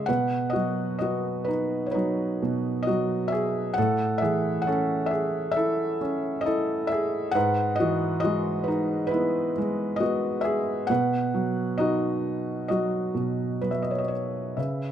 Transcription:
0.00 0.10 G#4 medium
0.06 2.41 B2 medium
0.06 0.51 B4 medium
0.06 0.55 F#5 medium
0.50 0.97 F#4 medium
0.50 0.97 D#5 medium
0.56 1.94 F#3 soft
0.99 1.45 F#4 medium
0.99 1.48 D#5 medium
1.03 2.83 B3 soft
1.44 1.85 D#4 soft
1.44 1.87 B4 medium
1.86 1.94 C#5 soft
1.91 2.82 D#4 soft
1.91 2.88 B4 medium
1.96 2.87 F#3 soft
2.42 3.73 B2 soft
2.83 3.31 D#5 medium
2.87 3.75 F#3 soft
2.87 3.29 F#4 medium
3.28 3.76 E5 medium
3.32 3.74 G#4 medium
3.74 4.21 F#5 medium
3.78 7.32 A2 medium
3.78 4.19 A4 medium
4.18 5.97 E3 soft
4.18 4.66 E5 medium
4.22 4.64 G#4 medium
4.62 5.11 F#5 medium
4.67 5.99 C#4 soft
4.67 5.09 A4 medium
5.06 5.50 E5 medium
5.11 5.53 G#4 medium
5.51 6.46 E5 medium
5.56 6.44 E4 soft
5.56 6.42 A4 medium
6.01 7.31 C#4 soft
6.41 6.89 D#5 medium
6.45 7.32 E4 soft
6.45 6.87 A4 medium
6.87 7.35 E5 medium
6.92 7.33 G#4 medium
7.31 10.85 G#2 medium
7.31 7.77 B4 medium
7.31 7.75 F#5 medium
7.76 8.19 D#5 medium
7.80 9.52 E3 soft
7.80 8.21 F#4 medium
8.20 8.67 D#5 medium
8.24 9.56 G#3 medium
8.24 8.65 F#4 medium
8.64 9.05 B4 medium
8.68 9.09 D#4 medium
9.07 10.00 B4 medium
9.11 10.00 B3 medium
9.11 9.95 E4 medium
9.58 10.87 G#3 medium
9.96 10.39 D#5 medium
10.00 10.87 B3 soft
10.00 10.42 F#4 medium
10.41 10.86 G#4 medium
10.41 10.89 E5 medium
10.87 13.13 B2 medium
10.87 11.76 B4 medium
10.87 11.81 F#5 medium
11.34 12.68 F#3 soft
11.78 13.58 D#4 medium
11.78 12.66 F#4 medium
11.78 12.67 D#5 medium
12.68 13.61 F#3 soft
12.68 13.69 F#4 medium
12.68 13.68 D#5 medium
13.15 14.53 B2 soft
13.61 14.55 F#3 soft
13.61 14.11 B4 medium
13.71 13.81 E5 medium
13.82 13.92 D#5 soft
13.91 14.00 C#5 medium
13.98 14.09 D#5 soft
14.08 14.58 C#5 medium
14.57 14.92 C#3 soft
14.57 14.92 B4 soft
14.57 14.92 E5 soft

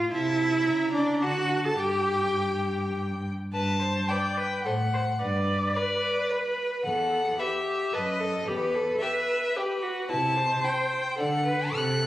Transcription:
0.00 0.11 F4 medium
0.00 0.11 F5 medium
0.12 0.68 C3 medium
0.12 0.92 E4 loud
0.12 0.93 E5 medium
0.12 0.63 A5 medium
0.66 1.24 C#3 medium
0.66 1.24 A#5 medium
0.93 1.23 D4 medium
0.93 1.21 D5 medium
1.22 1.79 D3 medium
1.22 1.66 F#4 medium
1.22 1.64 F#5 medium
1.22 1.78 A5 medium
1.65 1.78 A4 medium
1.65 1.81 A5 medium
1.79 3.29 G2 medium
1.79 2.93 G4 medium
1.79 3.29 G5 medium
1.79 2.95 G5 medium
3.53 4.00 G2 medium
3.53 3.79 B4 medium
3.53 4.10 A5 medium
3.82 4.11 C5 medium
4.09 4.18 B4 soft
4.09 4.39 D5 medium
4.09 4.63 G5 medium
4.37 4.65 B4 medium
4.64 5.11 A2 medium
4.64 4.73 A4 medium
4.64 4.74 C5 soft
4.64 5.21 F#5 medium
4.94 5.02 C5 medium
5.19 5.66 G2 medium
5.19 5.76 B4 medium
5.19 5.78 D5 medium
5.74 5.84 B4 soft
5.74 6.86 B4 medium
5.74 6.31 D5 medium
6.30 6.84 B4 medium
6.30 6.39 B4 soft
6.85 7.30 E2 medium
6.85 7.39 A4 medium
6.85 7.41 F#5 medium
7.39 7.95 G4 medium
7.39 7.47 B4 soft
7.39 7.95 E5 medium
7.93 8.38 F#2 medium
7.93 8.02 A4 medium
7.93 8.22 B4 medium
7.93 8.47 D#5 medium
8.20 8.49 A4 medium
8.47 8.92 E2 medium
8.47 8.76 G4 medium
8.47 9.00 B4 medium
8.75 9.03 A4 medium
9.00 9.09 G4 medium
9.00 9.58 B4 medium
9.00 9.58 E5 medium
9.56 9.84 G4 medium
9.56 9.64 G4 medium
9.56 10.10 B4 medium
9.82 10.11 F#4 medium
10.09 10.55 C3 medium
10.09 10.38 E4 medium
10.09 10.66 A5 medium
10.37 11.18 C5 medium
10.64 10.72 E4 medium
10.64 11.19 G5 medium
11.18 11.64 D3 medium
11.18 11.27 D4 medium
11.18 11.45 A4 medium
11.18 11.76 F#5 medium
11.46 11.73 B4 medium
11.73 12.07 C3 medium
11.73 12.07 A4 medium
11.73 12.07 F#6 medium

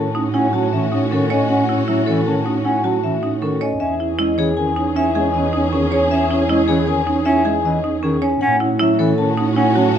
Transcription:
0.00 3.69 A2 medium
0.00 0.10 D#3 medium
0.00 3.57 C#4 medium
0.00 3.57 F#4 medium
0.00 0.21 A5 medium
0.15 0.29 C#4 medium
0.15 0.40 D#4 medium
0.34 0.48 C#4 loud
0.34 0.48 C#4 medium
0.34 0.59 E4 medium
0.34 0.59 F#5 medium
0.53 0.67 F#3 medium
0.53 0.67 C#4 medium
0.53 0.78 F#4 medium
0.53 0.79 A5 medium
0.73 0.87 E3 medium
0.73 0.87 C#4 medium
0.73 0.98 E5 medium
0.92 1.06 C#4 medium
0.92 1.17 D#4 medium
1.11 1.26 D#3 medium
1.11 1.36 C#4 medium
1.11 1.25 C#4 medium
1.11 1.37 A4 medium
1.30 1.45 C#4 medium
1.30 1.44 C#4 medium
1.30 1.55 C#5 medium
1.30 1.55 D#5 medium
1.49 1.64 C#4 medium
1.49 1.63 C#4 medium
1.49 1.75 F#5 medium
1.69 1.83 C#4 medium
1.69 1.87 E4 medium
1.88 2.03 F#3 medium
1.88 2.02 C#4 medium
1.88 2.13 E4 medium
1.88 2.13 E5 medium
2.06 2.22 E3 medium
2.06 2.21 C#4 medium
2.06 2.32 A4 medium
2.06 2.32 C#5 medium
2.26 2.41 D#3 medium
2.26 2.40 C#4 medium
2.26 2.51 A5 medium
2.46 2.59 C#4 medium
2.46 2.71 D#4 medium
2.64 2.79 C#4 medium
2.64 2.80 C#4 loud
2.64 2.90 E4 medium
2.64 2.90 F#5 medium
2.84 2.99 F#3 medium
2.84 2.98 C#4 medium
2.84 3.09 F#4 medium
2.84 3.09 A5 medium
3.04 3.18 E3 medium
3.04 3.17 C#4 medium
3.04 3.29 E5 medium
3.23 3.36 C#4 soft
3.23 3.48 D#4 medium
3.42 3.56 D#3 medium
3.42 3.67 C#4 medium
3.42 3.56 C#4 soft
3.42 3.67 A4 medium
3.61 3.76 C#4 medium
3.61 3.86 C#5 medium
3.61 3.86 D#5 medium
3.80 8.30 E2 medium
3.80 3.94 C#4 soft
3.80 3.95 C#4 loud
3.80 8.19 C#4 medium
3.80 8.19 G#4 medium
3.80 4.05 E5 medium
4.00 4.13 C#4 soft
4.00 4.17 E4 medium
4.19 4.33 G#3 medium
4.19 4.32 C#4 medium
4.19 4.44 E4 loud
4.19 4.44 D#5 medium
4.38 4.52 E3 medium
4.38 4.52 C#4 medium
4.38 4.63 G#4 loud
4.38 4.63 C#5 medium
4.57 4.72 D#3 medium
4.57 4.71 C#4 medium
4.57 4.82 G#5 medium
4.76 4.90 C#4 medium
4.76 5.02 D#4 medium
4.95 5.10 C#4 loud
4.95 5.10 C#4 medium
4.95 5.21 E4 medium
4.95 5.21 E5 loud
5.15 5.29 G#3 medium
5.15 5.29 C#4 medium
5.15 5.40 G#4 medium
5.15 5.40 G#5 medium
5.34 5.49 E3 medium
5.34 5.48 C#4 medium
5.34 5.59 D#5 medium
5.53 5.68 C#4 medium
5.53 5.78 D#4 medium
5.72 5.87 D#3 medium
5.72 5.98 C#4 medium
5.72 5.86 C#4 medium
5.72 5.98 G#4 medium
5.91 6.06 C#4 medium
5.91 6.17 C#5 medium
6.10 6.25 C#4 loud
6.10 6.25 C#4 medium
6.10 6.36 E5 medium
6.30 6.44 C#4 medium
6.30 6.48 E4 medium
6.48 6.64 G#3 medium
6.48 6.62 C#4 medium
6.48 6.75 E4 loud
6.48 6.74 D#5 medium
6.68 6.83 E3 loud
6.68 6.82 C#4 medium
6.68 6.94 G#4 loud
6.68 6.94 C#5 medium
6.87 7.02 D#3 medium
6.87 7.01 C#4 medium
6.87 7.13 G#5 medium
7.07 7.21 C#4 medium
7.07 7.32 D#4 loud
7.25 7.40 C#4 loud
7.25 7.40 C#4 medium
7.25 7.51 E4 medium
7.25 7.51 E5 loud
7.44 7.60 G#3 medium
7.44 7.59 C#4 medium
7.44 7.71 G#4 medium
7.44 7.70 G#5 medium
7.65 7.79 E3 medium
7.65 7.79 C#4 medium
7.65 7.90 D#5 medium
7.84 7.97 C#4 medium
7.84 8.09 D#4 medium
8.03 8.18 D#3 medium
8.03 8.28 C#4 medium
8.03 8.17 C#4 soft
8.03 8.29 G#4 medium
8.22 8.37 C#4 medium
8.22 8.47 C#5 loud
8.22 8.48 C#5 medium
8.41 9.98 A2 medium
8.41 8.56 C#4 loud
8.41 8.55 C#4 soft
8.41 9.98 C#4 medium
8.41 9.98 F#4 medium
8.41 8.67 F#5 loud
8.60 8.74 C#4 medium
8.60 8.78 E4 medium
8.79 8.95 F#3 medium
8.79 8.93 C#4 medium
8.79 9.05 E4 loud
8.79 9.06 E5 medium
8.99 9.14 E3 loud
8.99 9.13 C#4 medium
8.99 9.25 A4 loud
8.99 9.24 C#5 medium
9.18 9.33 D#3 medium
9.18 9.32 C#4 medium
9.18 9.44 A5 medium
9.37 9.52 C#4 medium
9.37 9.63 D#4 loud
9.56 9.71 C#4 loud
9.56 9.71 C#4 medium
9.56 9.82 E4 medium
9.56 9.82 F#5 loud
9.75 9.91 F#3 medium
9.75 9.90 C#4 medium
9.75 9.98 F#4 medium
9.75 9.98 A5 medium
9.95 9.98 C#4 medium

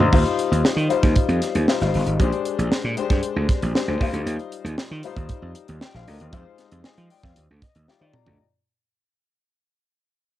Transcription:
0.00 0.10 D2 medium
0.00 0.15 G#3 loud
0.00 0.13 D#4 medium
0.00 0.14 F4 medium
0.00 0.25 G4 soft
0.00 0.15 A#4 medium
0.00 0.14 C5 loud
0.00 0.15 D5 loud
0.00 0.15 D#5 medium
0.00 0.15 F5 medium
0.00 0.15 G5 medium
0.00 0.15 G#5 medium
0.00 0.15 A#5 medium
0.00 0.12 C6 medium
0.00 floor tom medium
0.12 0.23 D#2 loud
0.12 0.83 G3 medium
0.12 0.83 D#4 medium
0.12 0.83 F4 medium
0.12 0.83 C5 loud
0.12 kick loud
0.12 splash medium
0.26 closed hi-hat soft
0.39 closed hi-hat medium
0.52 0.62 D#2 medium
0.52 closed hi-hat medium
0.65 snare loud
0.76 0.87 D#3 loud
0.76 closed hi-hat soft
0.89 1.60 G3 medium
0.89 1.60 D#4 medium
0.89 1.60 F4 medium
0.89 1.60 C5 loud
0.89 closed hi-hat medium
1.03 1.14 D#2 medium
1.03 kick loud
1.03 snare soft
1.03 closed hi-hat soft
1.16 kick medium
1.16 closed hi-hat medium
1.28 1.39 F2 medium
1.28 closed hi-hat soft
1.42 snare soft
1.42 closed hi-hat medium
1.55 1.65 D#2 medium
1.55 closed hi-hat medium
1.68 1.79 G3 medium
1.68 1.80 D#4 medium
1.68 1.80 F4 medium
1.68 1.80 C5 medium
1.68 snare loud
1.81 1.91 G#1 medium
1.81 2.16 G3 medium
1.81 2.16 D#4 medium
1.81 2.16 F4 medium
1.81 2.16 C5 medium
1.81 snare soft
1.81 closed hi-hat soft
1.94 2.04 G1 medium
1.94 open hi-hat medium
2.07 2.17 G#1 medium
2.07 closed hi-hat medium
2.19 2.30 A#1 loud
2.19 2.90 G#3 medium
2.19 2.89 D4 medium
2.19 2.90 G4 medium
2.19 2.90 C5 loud
2.19 kick loud
2.19 closed hi-hat medium
2.32 closed hi-hat soft
2.45 closed hi-hat medium
2.58 2.69 A#1 medium
2.58 closed hi-hat medium
2.72 snare loud
2.84 2.94 A#2 loud
2.97 3.67 G#3 medium
2.97 3.67 D4 medium
2.97 3.68 G4 medium
2.97 3.68 C5 loud
2.97 closed hi-hat medium
3.10 3.20 G2 medium
3.10 kick loud
3.10 snare soft
3.10 closed hi-hat medium
3.23 closed hi-hat medium
3.36 3.46 D2 medium
3.49 kick loud
3.49 snare soft
3.49 closed hi-hat medium
3.62 3.73 A#1 medium
3.62 closed hi-hat medium
3.75 3.87 G#3 medium
3.75 3.87 D4 medium
3.75 3.87 G4 medium
3.75 3.87 C5 medium
3.75 snare loud
3.88 3.98 D2 loud
3.88 4.01 G#3 medium
3.88 4.01 D4 medium
3.88 4.01 G4 medium
3.88 4.01 C5 medium
4.01 4.11 D#2 medium
4.01 4.94 G3 medium
4.01 4.94 D#4 medium
4.01 4.95 F4 medium
4.01 4.95 C5 loud
4.01 kick loud
4.01 open hi-hat medium
4.13 4.24 D2 medium
4.13 closed hi-hat medium
4.26 4.36 D#2 loud
4.26 closed hi-hat medium
4.39 closed hi-hat soft
4.52 closed hi-hat medium
4.64 4.75 D#2 medium
4.64 closed hi-hat medium
4.78 snare loud
4.91 5.01 D#3 loud
5.03 5.74 G3 medium
5.03 5.75 D#4 medium
5.03 5.74 F4 medium
5.03 5.75 C5 loud
5.03 closed hi-hat medium
5.16 5.27 D#2 loud
5.16 kick loud
5.16 closed hi-hat soft
5.29 kick medium
5.29 closed hi-hat medium
5.42 5.53 F2 medium
5.55 closed hi-hat medium
5.68 5.79 D#2 medium
5.68 closed hi-hat medium
5.81 5.94 D5 soft
5.81 5.94 G5 medium
5.81 snare loud
5.94 6.05 A#1 medium
5.94 6.08 C5 medium
5.94 6.07 F5 medium
5.94 snare soft
6.08 6.18 D2 medium
6.08 6.20 A#4 medium
6.08 6.20 D#5 medium
6.08 open hi-hat medium
6.20 6.31 D#2 medium
6.20 6.45 G4 medium
6.20 6.32 C5 medium
6.20 closed hi-hat medium
6.32 6.43 F2 loud
6.32 7.03 G#3 medium
6.32 7.03 D#4 medium
6.32 7.03 F4 medium
6.32 6.85 C5 loud
6.32 kick loud
6.32 closed hi-hat loud
6.58 snare soft
6.58 closed hi-hat medium
6.71 6.82 F2 loud
6.71 closed hi-hat medium
6.84 7.10 D#5 medium
6.84 7.10 G#5 medium
6.84 snare loud
6.97 7.08 F3 medium
6.97 closed hi-hat soft
7.10 7.23 D5 medium
7.10 7.23 G5 medium
7.10 open hi-hat medium
7.23 7.34 F2 medium
7.23 7.48 C5 medium
7.23 7.48 F5 medium
7.23 kick loud
7.23 snare soft
7.36 7.47 D#2 loud
7.36 closed hi-hat medium
7.50 7.60 D2 medium
7.62 7.87 D#5 medium
7.62 kick loud
7.62 snare soft
7.62 closed hi-hat medium
7.75 7.86 D#2 medium
7.75 closed hi-hat medium
7.88 7.99 G3 medium
7.88 8.00 D#4 medium
7.88 8.00 F4 medium
7.88 8.00 D5 medium
7.88 8.12 G5 medium
7.88 snare medium
8.00 8.11 D#3 loud
8.00 8.36 G3 medium
8.00 8.36 D#4 medium
8.00 8.36 F4 medium
8.00 8.36 D5 medium
8.13 8.38 A#5 medium
8.13 mid tom medium
8.26 8.37 D2 medium
8.26 floor tom medium

